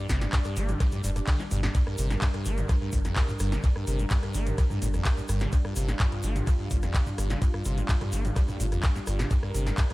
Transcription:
Already playing: analog synth pad G3 D4 D5
0.09 sub bass G1, acid bass C3, kick, snare, open hi-hat, shaker
0.21 acid bass G2, snare, closed hi-hat, shaker
0.32 acid bass G2, kick, clap, closed hi-hat, ride, shaker
0.45 acid bass G2, cross-stick, closed hi-hat, shaker
0.56 sub bass G1, acid bass A#3, open hi-hat, shaker
0.69 acid bass D3, closed hi-hat, mid tom, shaker
0.80 acid bass F3, kick, cross-stick, snare, closed hi-hat, ride, shaker
0.91 acid bass G2, closed hi-hat, mid tom, shaker
1.04 sub bass F1, acid bass G2, open hi-hat, shaker
1.16 acid bass G2, cross-stick, closed hi-hat, shaker
1.27 acid bass D3, kick, clap, closed hi-hat, ride, shaker
1.39 acid bass G3, snare, high tom, shaker
1.51 sub bass G1, acid bass G2, open hi-hat, mid tom, shaker
1.63 acid bass G2, snare, closed hi-hat, mid tom, shaker
1.75 acid bass G2, analog synth pad A#4, kick, closed hi-hat, ride, shaker
1.87 acid bass G2, cross-stick
1.98 sub bass G1, acid bass C3, open hi-hat, shaker
2.10 acid bass G2, snare, closed hi-hat, shaker
2.21 acid bass G2, kick, clap, closed hi-hat, ride, shaker
2.34 acid bass G2, cross-stick, closed hi-hat
2.45 sub bass G1, acid bass A#3, open hi-hat, shaker
2.58 acid bass D3, closed hi-hat, mid tom, shaker
2.69 acid bass F3, kick, cross-stick, closed hi-hat, ride, shaker
2.81 acid bass G2
2.92 sub bass G1, acid bass A2, kick, open hi-hat, shaker
3.05 acid bass F2, cross-stick, snare, closed hi-hat, shaker
3.16 acid bass G2, kick, clap, closed hi-hat, ride, shaker
3.29 acid bass G2, mid tom, shaker
3.39 sub bass G1, acid bass G2, cross-stick, open hi-hat, shaker
3.52 acid bass D3, snare, closed hi-hat, shaker
3.63 acid bass G2, kick, closed hi-hat, ride, shaker
3.76 acid bass G2, cross-stick
3.87 sub bass G1, acid bass C3, open hi-hat, shaker
3.99 acid bass G2, closed hi-hat, shaker
4.10 acid bass G2, kick, clap, closed hi-hat, ride, shaker
4.23 acid bass G2, cross-stick, closed hi-hat
4.34 sub bass G1, acid bass A#3, open hi-hat, shaker
4.47 acid bass D3, closed hi-hat, mid tom, shaker
4.58 acid bass F3, kick, cross-stick, closed hi-hat, ride, shaker
4.70 acid bass G2, mid tom, shaker
4.82 sub bass G1, acid bass A2, open hi-hat, shaker
4.94 acid bass F2, cross-stick, closed hi-hat, shaker
5.05 acid bass G2, kick, clap, closed hi-hat, ride, shaker
5.17 acid bass G2, shaker
5.28 sub bass G1, acid bass G2, cross-stick, open hi-hat, shaker
5.40 acid bass D3, snare, closed hi-hat, mid tom, shaker
5.52 acid bass G2, analog synth pad F4, kick, closed hi-hat, ride, shaker
5.65 acid bass G2, cross-stick
5.76 sub bass G1, acid bass C3, open hi-hat, shaker
5.88 acid bass G2, snare, closed hi-hat, shaker
5.99 acid bass G2, kick, clap, closed hi-hat, ride, shaker
6.12 acid bass G2, cross-stick, closed hi-hat
6.23 sub bass G1, acid bass A#3, open hi-hat, shaker
6.36 acid bass D3, closed hi-hat, mid tom, shaker
6.47 acid bass F3, kick, cross-stick, closed hi-hat, ride, shaker
6.59 acid bass G2
6.71 sub bass G1, acid bass A2, kick, open hi-hat, shaker
6.82 acid bass F2, cross-stick, snare, closed hi-hat, shaker
6.94 acid bass G2, kick, clap, closed hi-hat, ride, shaker
7.06 acid bass G2, mid tom, shaker
7.18 sub bass G1, acid bass G2, cross-stick, open hi-hat, shaker
7.30 acid bass D3, snare, closed hi-hat, shaker
7.42 acid bass G2, kick, closed hi-hat, ride, shaker
7.54 acid bass G2, cross-stick
7.65 sub bass G1, acid bass C3, open hi-hat, shaker
7.77 acid bass G2, closed hi-hat, shaker
7.89 acid bass G2, kick, clap, closed hi-hat, ride, shaker
8.01 acid bass G2, cross-stick, closed hi-hat, mid tom
8.12 sub bass G1, acid bass A#3, open hi-hat, shaker
8.25 acid bass D3, closed hi-hat, mid tom, shaker
8.36 acid bass F3, kick, cross-stick, closed hi-hat, ride, shaker
8.48 acid bass G2, mid tom, shaker
8.60 sub bass G1, acid bass A2, open hi-hat, shaker
8.72 acid bass F2, cross-stick, closed hi-hat, shaker
8.83 acid bass G2, kick, clap, closed hi-hat, ride, shaker
8.95 acid bass G2, snare, shaker
9.07 sub bass G1, acid bass G2, cross-stick, open hi-hat, shaker
9.19 acid bass D3, snare, closed hi-hat, mid tom, shaker
9.31 acid bass G2, analog synth pad A#4, kick, closed hi-hat, ride, shaker
9.43 acid bass G2, cross-stick
9.54 sub bass G1, acid bass C3, open hi-hat, shaker
9.66 acid bass G2, snare, closed hi-hat, shaker
9.78 acid bass G2, kick, clap, closed hi-hat, ride, shaker
9.90 acid bass G2, cross-stick, closed hi-hat

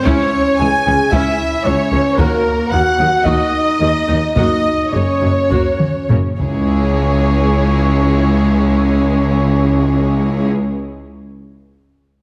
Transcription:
0.04 cello section C#2, double bass section C#2, french horn section C#4, viola section C#4 E4, violin section C#5, trumpet section C#5, taiko
0.58 cello section C#2, double bass section C#2, viola section E3 G#3, french horn section G#4, violin section G#5, trumpet section G#5
0.86 double bass section C#2, cello section C#2, viola section G#3 C#4
1.12 double bass section C#2, cello section C#2, viola section C#4 E4, french horn section E4, violin section E5, trumpet section E5, taiko
1.64 double bass section C#2, cello section C#2, viola section E3 G#3, french horn section C#4, violin section C#5, trumpet section C#5
1.91 double bass section C#2, cello section C#2, viola section G#3 C#4
2.18 double bass section D#2, cello section D#2, viola section A#3 F#4, french horn section A#3, violin section A#4, trumpet section A#4, taiko
2.70 cello section D#2, double bass section D#2, viola section D#3 A#3, french horn section F#4, violin section F#5, trumpet section F#5
2.98 cello section D#2, double bass section D#2, viola section F#3 D#4
3.24 double bass section D#2, cello section D#2, viola section A#3 F#4, french horn section D#4, violin section D#5, trumpet section D#5, taiko
3.80 cello section D#2, double bass section D#2, viola section D#3 A#3
4.08 double bass section D#2, cello section D#2, viola section F#3 D#4
4.35 double bass section F#1, cello section F#2, viola section A#3 F#4, french horn section D#4, violin section D#5, trumpet section D#5, taiko
4.92 double bass section F#1, cello section F#2, viola section C#3 A#3, french horn section C#4, violin section C#5, trumpet section C#5
5.21 double bass section F#1, cello section F#2, viola section F#3 C#4
5.50 double bass section F#1, cello section F#2, viola section A#3 F#4, taiko
5.80 taiko mid
6.09 double bass section F#1, cello section F#2, viola section C#3 A#3, taiko low-mid
6.39 double bass section C#2, cello section C#2, timpani C#3, viola section G#3 E4, french horn section C#4, violin section G#4 C#5, trumpet section C#5, taiko

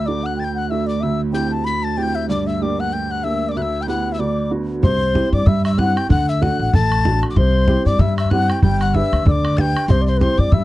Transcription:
Already playing: upright piano D2, cello D2
0.06 upright piano A3 D4 F#4, flute D5, tin whistle D6
0.23 flute F#5, tin whistle F#6
0.36 flute G5, tin whistle A6
0.44 tin whistle G6
0.55 flute F#5, tin whistle F#6
0.69 upright piano A3 D4 F#4, flute E5, tin whistle E6
0.86 flute D5, tin whistle D6
1.00 upright piano D2, flute E5, tin whistle E6
1.33 upright piano C4 E4 G4, flute G5, tin whistle G6
1.51 flute A5
1.65 flute B5, tin whistle B6
1.83 flute A5, tin whistle A6
1.97 upright piano C4 E4 G4, flute G5, tin whistle A6
2.03 tin whistle G6
2.15 flute E5
2.29 upright piano G2, flute D5, tin whistle D6
2.47 flute E5, tin whistle E6
2.58 upright piano A#3 D4 G4, flute D5 E5
2.62 tin whistle D6
2.80 flute F#5, tin whistle F#6
2.93 flute G5, tin whistle G6
3.10 flute F#5, tin whistle F#6
3.23 upright piano A#3 D4 G4, flute E5, tin whistle E6
3.49 flute D5, tin whistle D6 E6
3.56 upright piano D2, flute E5, tin whistle F#6
3.62 tin whistle E6
3.81 flute G5, tin whistle G6
3.87 upright piano B3 E4 G4, flute F#5, tin whistle F#6
4.12 flute E5, tin whistle E6
4.19 upright piano D2, flute D5, tin whistle D6
4.51 upright piano B3 D4 F#4
4.83 upright bass C2, upright piano C3, flute C5, tin whistle C6, bodhran
5.14 upright piano C4 E4 G4, bodhran
5.33 upright bass G2, flute D5, tin whistle D6
5.46 upright bass G2, upright piano G3, flute E5, tin whistle E6, bodhran
5.65 flute E5, tin whistle E6, bodhran
5.73 bodhran
5.77 upright piano C4 E4 G4, flute F#5, tin whistle F#6, bodhran
5.96 flute G5, tin whistle G6, bodhran
6.09 upright bass D2, upright piano D3, flute F#5, tin whistle F#6, bodhran
6.29 flute E5, tin whistle E6
6.41 upright piano A3 D4 F#4, flute F#5, tin whistle F#6, bodhran
6.59 upright bass A1, flute F#5
6.73 upright bass A1, upright piano A3, flute A5, tin whistle A6, bodhran
6.92 bodhran
6.99 bodhran
7.05 upright piano A3 D4 F#4, bodhran
7.23 bodhran
7.30 tin whistle D6
7.36 upright bass C2, upright piano C3, flute C5, tin whistle C6, bodhran
7.68 upright piano C4 E4 G4, bodhran
7.86 upright bass G2, flute D5, tin whistle D6
7.99 upright bass G2, upright piano G3, flute E5, tin whistle E6, bodhran
8.17 flute E5, tin whistle E6, bodhran
8.25 bodhran
8.30 upright piano C4 E4 G4, flute F#5, tin whistle F#6, bodhran
8.48 flute G5, tin whistle G6, bodhran
8.62 upright bass G1, upright piano G3, flute G5, tin whistle G6, bodhran
8.80 flute F#5, tin whistle F#6, bodhran
8.94 upright piano D4 G4 B4, flute E5, tin whistle E6, bodhran
9.13 upright bass D2, bodhran
9.25 upright bass D2, upright piano D3, flute D5, tin whistle E6, bodhran
9.31 tin whistle D6
9.45 bodhran
9.51 bodhran
9.57 upright piano D4 G4 B4, flute G5, tin whistle G6 A6, bodhran
9.77 bodhran
9.88 upright bass C2, upright piano C3, flute C5, tin whistle C6, bodhran
10.02 flute D5
10.07 flute C5, tin whistle C6
10.17 upright piano C4 G4, flute B4, tin whistle C6
10.21 upright piano E4, flute C5, bodhran
10.38 upright bass G2, flute D5, tin whistle D6
10.52 upright bass G2, upright piano G3, flute E5, tin whistle E6, bodhran

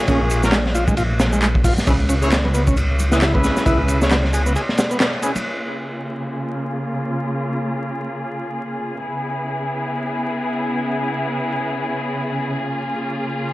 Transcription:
0.08 detuned saw bass A#1, horn section A#3 C#4 F4 G#4, transistor combo organ C#4, kick, ride, shaker
0.30 ride, shaker
0.43 horn section A#3 C#4 F4 A#4, snare, high conga, shaker
0.52 transistor combo organ G#3, snare, clap, ride, shaker
0.66 snare, low conga
0.75 transistor combo organ F4, ride, shaker
0.88 transistor combo organ G#3, kick, shaker
0.97 transistor combo organ F4, ride, shaker
1.11 high conga
1.20 snare, ride, shaker
1.33 transistor combo organ G#3, shaker
1.42 transistor combo organ G#3, clap, ride, shaker
1.55 kick
1.64 transistor combo organ F4, kick, open hi-hat, shaker
1.77 snare, high conga, low conga, shaker
1.87 detuned saw bass C#2, horn section C#4 E4 G#4 B4, transistor combo organ C#4, kick, ride, shaker
2.00 ride
2.09 transistor combo organ C#4, ride, shaker
2.22 horn section C#4 E4 G#4 C#5, high conga, shaker
2.32 snare, clap, ride, shaker
2.45 transistor combo organ B3, low conga
2.54 transistor combo organ B3, ride, shaker
2.67 transistor combo organ C#4, kick, shaker
2.77 ride, shaker
2.99 ride, low conga, shaker
3.12 horn section C#4 E4 G#4 B4, transistor combo organ E4, snare, high conga, shaker
3.22 snare, clap, ride, shaker
3.34 transistor combo organ B3, horn section C#4 E4 G#4 B4, kick
3.44 snare, ride, shaker
3.57 snare, shaker
3.66 detuned saw bass C#2, horn section C#4 E4 G#4 B4, transistor combo organ E4, kick, ride, shaker
3.88 ride, shaker
4.01 horn section C#4 E4 G#4 C#5, snare, high conga, shaker
4.11 transistor combo organ B3, snare, clap, ride, shaker
4.24 snare, low conga
4.33 transistor combo organ G#4, ride, shaker
4.46 transistor combo organ B3, shaker
4.56 transistor combo organ G#4, ride, shaker
4.69 snare, high conga
4.77 snare, ride, shaker
4.91 transistor combo organ B3, shaker
5.00 transistor combo organ B3, snare, clap, ride, shaker
5.13 ride
5.22 horn section C#4 E4 G#4 B4, transistor combo organ G#4, ride, shaker
5.35 ride, high conga, low conga, shaker
5.45 string section C#3 A#3 F4 G#4
9.04 string section C#3 B3 E4
12.62 string section A#3 F4

